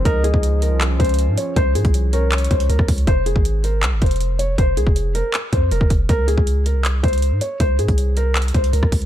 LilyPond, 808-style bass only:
\new Staff \with { instrumentName = "808-style bass" } { \clef bass \time 4/4 \key f \minor \tempo 4 = 159 des,8. des,4 c,8. des,8. aes,16 r8 | des,8 aes,16 c,4.~ c,16 des,8 des,16 des,16 des,8 | f,,8. aes,,4~ aes,,16 c,16 aes,,16 f,,4. | f,,8 c,16 f,,4 r8. f,8 f,,16 f,,16 f,,8 |
des,8. des,4 c,8. des,8. aes,16 r8 | des,8 aes,16 c,4.~ c,16 des,8 des,16 des,16 des,8 | }